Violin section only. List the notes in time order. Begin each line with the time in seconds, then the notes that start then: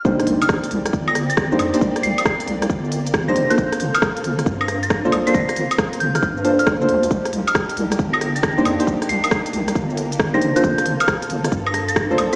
0.05 A#3 C4 G4 D5
3.36 C4 F4 A4
7.11 A#3 D4 D#4 G4
10.41 C4 F4 A4
12.18 G4